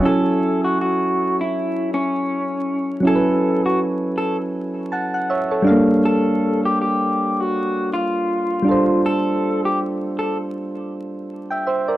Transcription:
Already playing: synth keys C#5 E5
0.00 synth keys F#3 C#4
0.05 synth keys E4 A4 G#5, clean electric guitar A4
0.64 clean electric guitar F#4
0.81 clean electric guitar F#4
1.41 clean electric guitar E4
1.94 clean electric guitar C#4
3.00 synth keys F#3 C#4
3.05 synth keys E4 G#5, clean electric guitar A4
3.09 synth keys A4
3.15 synth keys B4
3.66 clean electric guitar F#4
4.18 clean electric guitar A4
4.92 synth keys F#5 A5
5.14 synth keys F#5
5.30 synth keys C#5 E5
5.51 synth keys A4 C#5
5.62 synth keys G3 D4
5.67 synth keys A4 F5
5.71 synth keys A#3
6.05 clean electric guitar A4
6.65 clean electric guitar G4
6.82 clean electric guitar G4
7.40 clean electric guitar F#4
7.93 clean electric guitar F4
8.62 synth keys G3 D4
8.67 synth keys F4 A4
8.71 synth keys C5
9.06 clean electric guitar A4
9.65 clean electric guitar G4
10.19 clean electric guitar A4
11.51 synth keys E5 G5
11.67 synth keys C5 E5
11.88 synth keys A#4 D5

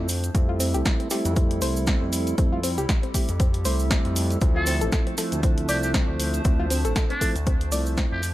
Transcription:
Already playing: analog synth bass F2
0.09 ambient pad F3 G3 E4 A4, open hi-hat, cabasa
0.24 closed hi-hat, cabasa
0.35 analog synth bass F2, tonewheel organ G3 A3 C4 E4, synth arpeggio sound C4, kick, closed hi-hat, cabasa
0.49 synth arpeggio sound F4
0.60 synth arpeggio sound C4, open hi-hat, cabasa
0.74 analog synth bass C2, synth arpeggio sound G4, closed hi-hat, cabasa
0.85 kick, snare, closed hi-hat, cabasa
1.00 synth arpeggio sound C4, closed hi-hat
1.10 tonewheel organ G3 A3 C4 E4, synth arpeggio sound G4, snare, open hi-hat, cabasa
1.25 analog synth bass F2, closed hi-hat, cabasa
1.36 tonewheel organ G3 A3 C4 E4, synth arpeggio sound C4, kick, closed hi-hat, cabasa
1.51 closed hi-hat
1.61 analog synth bass C2, synth arpeggio sound C5, open hi-hat, cabasa
1.76 cabasa
1.87 synth arpeggio sound C4, kick, snare, closed hi-hat, cabasa
2.02 analog synth bass F2
2.13 ambient pad G4, open hi-hat, cabasa
2.27 closed hi-hat, cabasa
2.38 analog synth bass F2, tonewheel organ G3 A3 C4 E4, synth arpeggio sound C4, kick, closed hi-hat, cabasa
2.52 synth arpeggio sound F4
2.63 synth arpeggio sound C4, open hi-hat, cabasa
2.78 analog synth bass C2, synth arpeggio sound G4, closed hi-hat, cabasa
2.89 kick, snare, closed hi-hat, cabasa
3.03 synth arpeggio sound C4, closed hi-hat
3.14 tonewheel organ G3 A3 C4 E4, synth arpeggio sound G4, kick, open hi-hat, cabasa
3.28 analog synth bass F2, closed hi-hat, cabasa
3.40 synth arpeggio sound C4, kick, closed hi-hat, cabasa
3.54 closed hi-hat
3.65 analog synth bass C2, tonewheel organ G3 A3 C4 E4, synth arpeggio sound C5, open hi-hat, cabasa
3.79 cabasa
3.91 synth arpeggio sound C4, kick, snare, closed hi-hat, cabasa
4.05 analog synth bass F2, closed hi-hat
4.16 open hi-hat, cabasa
4.30 closed hi-hat, cabasa
4.41 analog synth bass D2, tonewheel organ F3 A3 C4 E4, ambient pad F3 A3 D4 C5, synth arpeggio sound C4, kick, closed hi-hat, cabasa
4.56 synth arpeggio sound F4, muted trumpet A4
4.66 synth arpeggio sound C4, open hi-hat, cabasa
4.81 analog synth bass A1, synth arpeggio sound A4, closed hi-hat, cabasa
4.92 synth arpeggio sound A4, kick, snare, closed hi-hat, cabasa
5.07 synth arpeggio sound C4, closed hi-hat
5.17 tonewheel organ F3 A3 C4 E4, synth arpeggio sound A4, snare, open hi-hat, cabasa
5.32 analog synth bass D2, closed hi-hat, cabasa
5.43 tonewheel organ F3 A3 C4 E4, synth arpeggio sound C4, kick, closed hi-hat, cabasa
5.58 closed hi-hat
5.69 analog synth bass C2, muted trumpet G4, synth arpeggio sound D5, open hi-hat, cabasa
5.83 muted trumpet G4, cabasa
5.94 synth arpeggio sound C4, kick, snare, closed hi-hat, cabasa
6.08 analog synth bass D2
6.20 open hi-hat, cabasa
6.34 closed hi-hat, cabasa
6.45 analog synth bass D2, tonewheel organ F3 A3 C4 E4, synth arpeggio sound C4, kick, closed hi-hat, cabasa
6.59 synth arpeggio sound F4
6.70 synth arpeggio sound C4, open hi-hat, cabasa
6.85 analog synth bass A1, synth arpeggio sound A4, closed hi-hat, cabasa
6.96 synth arpeggio sound A4, kick, snare, closed hi-hat, cabasa
7.10 synth arpeggio sound C4, muted trumpet D4, closed hi-hat
7.21 tonewheel organ F3 A3 C4 E4, synth arpeggio sound A4, kick, open hi-hat, cabasa
7.36 analog synth bass D2, closed hi-hat, cabasa
7.47 synth arpeggio sound C4, kick, closed hi-hat, cabasa
7.61 closed hi-hat
7.72 analog synth bass C2, tonewheel organ F3 A3 C4 E4, synth arpeggio sound D5, open hi-hat, cabasa
7.86 cabasa
7.97 synth arpeggio sound C4, kick, snare, closed hi-hat, cabasa
8.12 analog synth bass F2, muted trumpet G4
8.23 ambient pad G3 E4 A4, open hi-hat, cabasa

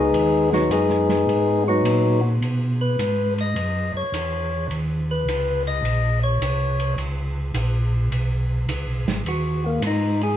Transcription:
Already playing: tonewheel organ C#2 G#3 B3 D#4 G#4
0.13 tonewheel organ D#2, ride
0.53 tonewheel organ F#3 B3 D#4 F#4, snare
0.70 tonewheel organ F#2 G#3 B3 D#4 G#4, hi-hat pedal, ride
0.89 snare
1.09 snare, ride
1.27 tonewheel organ G#2, ride
1.68 tonewheel organ F#3 B3 D#4 F#4
1.83 tonewheel organ A#2, hi-hat pedal, ride
2.40 tonewheel organ B2, ride
2.81 tonewheel organ B4
2.99 tonewheel organ G#2, hi-hat pedal, ride
3.38 tonewheel organ D#5, ride
3.55 tonewheel organ F#2, ride
3.94 tonewheel organ F#2 C#5
4.12 tonewheel organ E2, hi-hat pedal, ride
4.69 tonewheel organ D#2, ride
5.11 tonewheel organ B4
5.25 tonewheel organ C#2, hi-hat pedal, ride
5.67 tonewheel organ D#5, ride
5.83 tonewheel organ A#1, ride
6.24 tonewheel organ C#5
6.39 tonewheel organ C2, hi-hat pedal, ride
6.80 ride
6.96 tonewheel organ C#2, ride
7.54 tonewheel organ A#1, hi-hat pedal, ride
8.10 tonewheel organ B1, ride
8.67 tonewheel organ C#2, hi-hat pedal, ride
8.86 tonewheel organ B1
9.05 tonewheel organ G#1, snare, ride
9.25 tonewheel organ D#2 F#4, ride
9.66 tonewheel organ A#3
9.81 tonewheel organ G#2, hi-hat pedal, ride
9.87 tonewheel organ D#4
10.21 tonewheel organ G#4, ride

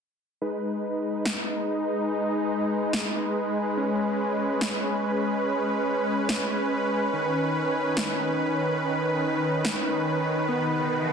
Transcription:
0.42 supersaw synth G#3 D#4 B4
1.25 snare
2.93 snare
3.77 supersaw synth C#4
4.61 snare
6.29 snare
7.13 supersaw synth D#3
7.97 snare
9.65 snare
10.49 supersaw synth B3, riser

